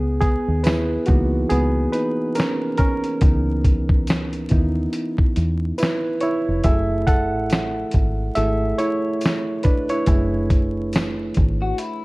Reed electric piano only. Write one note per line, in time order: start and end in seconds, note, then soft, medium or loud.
0.00 0.19 B3 medium
0.00 0.19 G#4 medium
0.20 0.62 B3 medium
0.20 0.65 G#4 medium
0.64 1.05 E4 medium
0.64 1.04 B4 medium
1.06 2.32 E3 medium
1.06 1.48 A#3 medium
1.06 1.50 B3 soft
1.06 1.93 D#4 medium
1.06 1.51 F#4 medium
1.49 1.91 B3 medium
1.49 1.89 G#4 medium
1.92 2.34 D#4 medium
1.92 2.37 B4 medium
2.35 2.76 C#4 medium
2.35 2.75 A#4 medium
2.78 5.75 C#4 medium
2.78 5.87 A#4 medium
3.21 3.60 E3 soft
3.21 3.61 B3 soft
3.21 3.61 D#4 medium
4.50 5.75 B3 soft
4.50 5.75 D#4 medium
4.50 5.75 E4 medium
5.78 6.19 E4 medium
5.78 6.18 B4 medium
6.21 6.62 E4 medium
6.21 6.61 C#5 medium
6.64 7.25 A3 soft
6.64 7.25 E4 medium
6.64 7.25 G#4 medium
6.64 7.05 A4 medium
6.64 7.08 E5 medium
7.07 8.32 A4 medium
7.07 8.32 F#5 loud
8.36 8.75 A3 soft
8.36 8.75 E4 medium
8.36 8.75 G#4 soft
8.36 8.76 A4 medium
8.36 8.80 E5 loud
8.78 9.61 E4 medium
8.78 9.60 C#5 medium
9.64 9.89 D4 medium
9.64 9.91 B4 medium
9.90 10.07 E4 medium
9.90 11.14 C#5 medium
10.07 12.05 A3 medium
10.07 12.05 E4 medium
10.07 12.05 G#4 medium